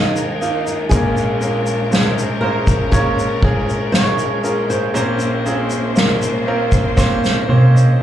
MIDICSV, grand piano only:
0, 0, Header, 1, 2, 480
1, 0, Start_track
1, 0, Key_signature, -5, "minor"
1, 0, Tempo, 1005025
1, 435, Time_signature, 4, 2, 24, 8
1, 1877, Tempo, 1022147
1, 3801, End_track
2, 0, Start_track
2, 0, Title_t, "Grand piano"
2, 0, Program_c, 0, 0
2, 0, Control_c, 0, 64, 127
2, 0, Note_on_c, 0, 39, 61
2, 0, Note_on_c, 0, 51, 61
2, 0, Note_on_c, 0, 58, 77
2, 0, Note_on_c, 0, 63, 70
2, 0, Note_on_c, 0, 65, 82
2, 0, Note_on_c, 0, 68, 88
2, 186, Note_off_c, 0, 58, 0
2, 188, Note_off_c, 0, 63, 0
2, 188, Note_off_c, 0, 65, 0
2, 197, Note_on_c, 0, 58, 78
2, 199, Note_on_c, 0, 63, 72
2, 201, Note_on_c, 0, 65, 93
2, 418, Note_off_c, 0, 39, 0
2, 418, Note_off_c, 0, 51, 0
2, 423, Note_off_c, 0, 58, 0
2, 425, Note_off_c, 0, 63, 0
2, 425, Note_off_c, 0, 65, 0
2, 436, Note_on_c, 0, 56, 93
2, 439, Note_on_c, 0, 34, 67
2, 439, Note_on_c, 0, 58, 87
2, 440, Note_on_c, 0, 46, 65
2, 440, Note_on_c, 0, 61, 84
2, 441, Control_c, 0, 64, 0
2, 442, Note_on_c, 0, 70, 104
2, 443, Note_on_c, 0, 65, 89
2, 444, Note_off_c, 0, 68, 0
2, 534, Control_c, 0, 64, 127
2, 663, Note_off_c, 0, 56, 0
2, 664, Note_off_c, 0, 58, 0
2, 665, Note_off_c, 0, 61, 0
2, 666, Note_off_c, 0, 65, 0
2, 666, Note_off_c, 0, 70, 0
2, 672, Note_on_c, 0, 56, 77
2, 674, Note_on_c, 0, 58, 70
2, 675, Note_on_c, 0, 65, 68
2, 676, Note_on_c, 0, 61, 72
2, 677, Note_on_c, 0, 70, 85
2, 902, Note_off_c, 0, 56, 0
2, 903, Note_off_c, 0, 58, 0
2, 903, Note_off_c, 0, 65, 0
2, 904, Note_off_c, 0, 61, 0
2, 904, Note_off_c, 0, 70, 0
2, 913, Note_on_c, 0, 56, 85
2, 915, Note_on_c, 0, 58, 74
2, 918, Note_on_c, 0, 61, 75
2, 918, Note_on_c, 0, 65, 72
2, 921, Note_on_c, 0, 72, 85
2, 1143, Note_off_c, 0, 56, 0
2, 1144, Note_off_c, 0, 58, 0
2, 1145, Note_off_c, 0, 61, 0
2, 1145, Note_off_c, 0, 65, 0
2, 1147, Note_off_c, 0, 72, 0
2, 1153, Note_on_c, 0, 56, 76
2, 1154, Note_on_c, 0, 58, 74
2, 1155, Note_on_c, 0, 61, 77
2, 1157, Note_on_c, 0, 65, 78
2, 1158, Note_on_c, 0, 72, 87
2, 1382, Note_off_c, 0, 56, 0
2, 1383, Note_off_c, 0, 58, 0
2, 1383, Note_off_c, 0, 61, 0
2, 1384, Note_off_c, 0, 65, 0
2, 1385, Note_off_c, 0, 72, 0
2, 1396, Note_on_c, 0, 56, 100
2, 1398, Note_on_c, 0, 61, 92
2, 1398, Note_on_c, 0, 65, 94
2, 1400, Note_on_c, 0, 58, 90
2, 1400, Note_on_c, 0, 70, 110
2, 1624, Note_off_c, 0, 56, 0
2, 1625, Note_off_c, 0, 58, 0
2, 1625, Note_off_c, 0, 61, 0
2, 1625, Note_off_c, 0, 65, 0
2, 1626, Note_off_c, 0, 70, 0
2, 1636, Note_on_c, 0, 56, 78
2, 1638, Note_on_c, 0, 58, 76
2, 1639, Note_on_c, 0, 61, 74
2, 1640, Note_on_c, 0, 65, 77
2, 1644, Note_on_c, 0, 68, 92
2, 1865, Note_off_c, 0, 56, 0
2, 1866, Note_off_c, 0, 58, 0
2, 1866, Note_off_c, 0, 61, 0
2, 1867, Note_off_c, 0, 65, 0
2, 1869, Note_off_c, 0, 68, 0
2, 1879, Note_on_c, 0, 56, 81
2, 1881, Note_on_c, 0, 58, 69
2, 1883, Note_on_c, 0, 61, 69
2, 1883, Note_on_c, 0, 65, 69
2, 1885, Note_on_c, 0, 73, 82
2, 2104, Note_off_c, 0, 56, 0
2, 2105, Note_off_c, 0, 58, 0
2, 2106, Note_off_c, 0, 61, 0
2, 2106, Note_off_c, 0, 65, 0
2, 2107, Note_off_c, 0, 73, 0
2, 2112, Note_on_c, 0, 56, 79
2, 2113, Note_on_c, 0, 58, 69
2, 2116, Note_on_c, 0, 61, 72
2, 2117, Note_on_c, 0, 65, 70
2, 2118, Note_on_c, 0, 70, 89
2, 2337, Note_off_c, 0, 34, 0
2, 2337, Note_off_c, 0, 46, 0
2, 2341, Note_off_c, 0, 56, 0
2, 2341, Note_off_c, 0, 58, 0
2, 2342, Note_off_c, 0, 61, 0
2, 2343, Note_off_c, 0, 65, 0
2, 2343, Note_off_c, 0, 70, 0
2, 2351, Note_on_c, 0, 58, 101
2, 2352, Note_on_c, 0, 46, 64
2, 2352, Note_on_c, 0, 60, 88
2, 2353, Note_on_c, 0, 34, 61
2, 2354, Note_on_c, 0, 61, 91
2, 2355, Note_on_c, 0, 65, 84
2, 2356, Note_on_c, 0, 72, 104
2, 2359, Control_c, 0, 64, 0
2, 2444, Control_c, 0, 64, 127
2, 2579, Note_off_c, 0, 58, 0
2, 2580, Note_off_c, 0, 60, 0
2, 2581, Note_off_c, 0, 61, 0
2, 2581, Note_off_c, 0, 65, 0
2, 2582, Note_off_c, 0, 72, 0
2, 2591, Note_on_c, 0, 58, 74
2, 2591, Note_on_c, 0, 60, 70
2, 2593, Note_on_c, 0, 61, 68
2, 2595, Note_on_c, 0, 68, 81
2, 2596, Note_on_c, 0, 65, 68
2, 2818, Note_off_c, 0, 58, 0
2, 2818, Note_off_c, 0, 60, 0
2, 2819, Note_off_c, 0, 61, 0
2, 2820, Note_off_c, 0, 68, 0
2, 2821, Note_off_c, 0, 65, 0
2, 2829, Note_on_c, 0, 58, 82
2, 2830, Note_on_c, 0, 72, 68
2, 2831, Note_on_c, 0, 65, 69
2, 2833, Note_on_c, 0, 61, 69
2, 2836, Note_on_c, 0, 70, 87
2, 3057, Note_off_c, 0, 58, 0
2, 3057, Note_off_c, 0, 72, 0
2, 3058, Note_off_c, 0, 65, 0
2, 3059, Note_off_c, 0, 61, 0
2, 3060, Note_off_c, 0, 70, 0
2, 3069, Note_on_c, 0, 58, 87
2, 3069, Note_on_c, 0, 61, 82
2, 3070, Note_on_c, 0, 60, 79
2, 3072, Note_on_c, 0, 65, 81
2, 3074, Note_on_c, 0, 70, 101
2, 3296, Note_off_c, 0, 58, 0
2, 3297, Note_off_c, 0, 60, 0
2, 3298, Note_off_c, 0, 61, 0
2, 3299, Note_off_c, 0, 65, 0
2, 3300, Note_off_c, 0, 70, 0
2, 3304, Note_on_c, 0, 58, 115
2, 3304, Note_on_c, 0, 60, 109
2, 3306, Note_on_c, 0, 65, 105
2, 3307, Note_on_c, 0, 61, 99
2, 3309, Note_on_c, 0, 72, 126
2, 3537, Note_off_c, 0, 58, 0
2, 3538, Note_off_c, 0, 60, 0
2, 3538, Note_off_c, 0, 65, 0
2, 3539, Note_off_c, 0, 61, 0
2, 3540, Note_off_c, 0, 72, 0
2, 3545, Note_on_c, 0, 58, 88
2, 3546, Note_on_c, 0, 60, 79
2, 3547, Note_on_c, 0, 61, 83
2, 3547, Note_on_c, 0, 65, 80
2, 3548, Note_on_c, 0, 73, 75
2, 3550, Note_on_c, 0, 72, 99
2, 3664, Note_off_c, 0, 73, 0
2, 3670, Note_on_c, 0, 75, 66
2, 3781, Note_off_c, 0, 58, 0
2, 3781, Note_off_c, 0, 60, 0
2, 3782, Note_off_c, 0, 61, 0
2, 3782, Note_off_c, 0, 65, 0
2, 3783, Note_off_c, 0, 72, 0
2, 3786, Note_off_c, 0, 75, 0
2, 3801, Note_off_c, 0, 34, 0
2, 3801, Note_off_c, 0, 46, 0
2, 3801, End_track
0, 0, End_of_file